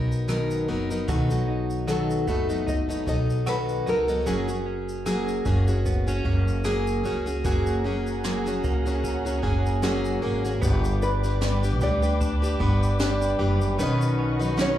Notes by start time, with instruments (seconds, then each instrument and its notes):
Already playing: upright bass B1, steel-string acoustic guitar F#3 B3 D#4 A#4, nylon-string guitar A#4
0.12 shaker
0.28 steel-string acoustic guitar B2 D#3 F#3 B3 D#4 A#4, cross-stick, shaker
0.51 shaker
0.68 upright bass F#1, steel-string acoustic guitar F#3 B3 D#4 A#4
0.90 steel-string acoustic guitar F#3 B3 D#4 A#4, shaker
1.08 upright bass B1, steel-string acoustic guitar B2 D#3 F#3 B3 D#4 A4, clean electric guitar F#4, kick, shaker
1.30 steel-string acoustic guitar F#3 B3 D#4 A4, shaker
1.48 clean electric guitar D#4
1.70 shaker
1.87 steel-string acoustic guitar B2 D#3 F#3 B3 D#4 A4, clean electric guitar F#4, nylon-string guitar A4, cross-stick, shaker
2.10 shaker
2.27 upright bass F#1, steel-string acoustic guitar F#3 B3 D#4 A4, clean electric guitar A3, nylon-string guitar F#4, kick, shaker
2.49 steel-string acoustic guitar F#3 B3 D#4 A4, shaker
2.67 clean electric guitar D#4, nylon-string guitar D#5, kick, shaker
2.89 steel-string acoustic guitar F#3 B3 D#4 A4, shaker
3.06 upright bass B1, steel-string acoustic guitar F#3 B3 D#4 A4, nylon-string guitar D#5, kick, shaker
3.30 shaker
3.46 steel-string acoustic guitar B2 D#3 F#3 B3 D#4 A4, clean electric guitar F#4, nylon-string guitar B4, cross-stick, shaker
3.69 shaker
3.87 upright bass C#2, steel-string acoustic guitar F#3 B3 D#4 A4, nylon-string guitar A#4, shaker
4.08 steel-string acoustic guitar F#3 B3 D#4 A4, shaker
4.26 upright bass F#1, steel-string acoustic guitar F#3 A#3 C#4 F#4 G#4, shaker
4.48 steel-string acoustic guitar C#4 F#4 G#4, shaker
4.66 clean electric guitar C#4
4.89 shaker
5.06 steel-string acoustic guitar F#3 A#3 C#4 F#4 G#4, cross-stick, shaker
5.28 shaker
5.45 upright bass F#1, steel-string acoustic guitar A#3 C#4 F#4 G#4, kick, shaker
5.67 steel-string acoustic guitar C#4 F#4 G#4, shaker
5.86 clean electric guitar B3, kick, shaker
6.07 steel-string acoustic guitar C#4 F#4 G#4, shaker
6.25 upright bass F#1, steel-string acoustic guitar A#3 C#4 F#4 G#4, kick
6.48 shaker
6.64 steel-string acoustic guitar F#3 A#3 C#4 F#4 G#4, cross-stick, shaker
6.87 shaker
7.04 upright bass C#2, steel-string acoustic guitar A#3 C#4 F#4 G#4, shaker
7.26 steel-string acoustic guitar C#4 F#4 G#4, shaker
7.44 upright bass F#1, steel-string acoustic guitar F#3 A#3 C#4 F#4 G#4, string section G#4 C#5 F#5 A#5, kick, shaker
7.66 shaker
7.84 steel-string acoustic guitar A#3 C#4 F#4 G#4
8.07 shaker
8.24 steel-string acoustic guitar F#3 A#3 C#4 F#4 G#4, snare, shaker
8.46 steel-string acoustic guitar C#4 F#4 G#4, shaker
8.64 upright bass C#2, clean electric guitar A#3, kick, shaker
8.86 steel-string acoustic guitar C#4 F#4 G#4, shaker
9.04 clean electric guitar C#4, kick, shaker
9.25 steel-string acoustic guitar C#4 F#4 G#4, shaker
9.42 upright bass F#1, steel-string acoustic guitar A#3 C#4 F#4 G#4, kick
9.66 shaker
9.82 steel-string acoustic guitar F#3 A#3 C#4 F#4 G#4, snare, shaker
10.05 shaker
10.22 upright bass G#1, steel-string acoustic guitar A#3 C#4 F#4 G#4
10.44 steel-string acoustic guitar C#4 F#4 G#4, shaker
10.61 upright bass G1, steel-string acoustic guitar G3 D4 G4 B4, clean electric guitar B3, nylon-string guitar G4, string section B4 D5 G5 D6, kick, shaker
10.84 shaker
11.02 clean electric guitar D4, nylon-string guitar B4, shaker
11.23 steel-string acoustic guitar D4 G4 B4, shaker
11.41 steel-string acoustic guitar G3 D4 G4 B4, clean electric guitar B3, snare, shaker
11.63 steel-string acoustic guitar D4 G4 B4, shaker
11.81 upright bass D2, steel-string acoustic guitar G3 D4 G4 B4, nylon-string guitar D5, kick, shaker
12.02 steel-string acoustic guitar D4 G4 B4, shaker
12.21 clean electric guitar D4, kick, shaker
12.42 steel-string acoustic guitar D4 G4 B4, shaker
12.59 upright bass G1, steel-string acoustic guitar G3 D4 G4 B4, clean electric guitar B3, kick
12.83 shaker
12.99 steel-string acoustic guitar G3 D4 G4 B4, snare, shaker
13.04 nylon-string guitar D5
13.22 shaker
13.39 upright bass F#1, steel-string acoustic guitar G3 D4 G4 B4
13.61 shaker
13.78 upright bass B1, steel-string acoustic guitar B2 D#3 F#3 C#4 D#4 B4, string section D#5 F#5 C#6, shaker
13.82 nylon-string guitar D#5
14.01 shaker
14.18 clean electric guitar C#4
14.39 steel-string acoustic guitar F#3 C#4 D#4 B4, shaker
14.57 steel-string acoustic guitar B2 D#3 F#3 C#4 D#4 B4, clean electric guitar B3, snare, shaker
14.61 nylon-string guitar C#5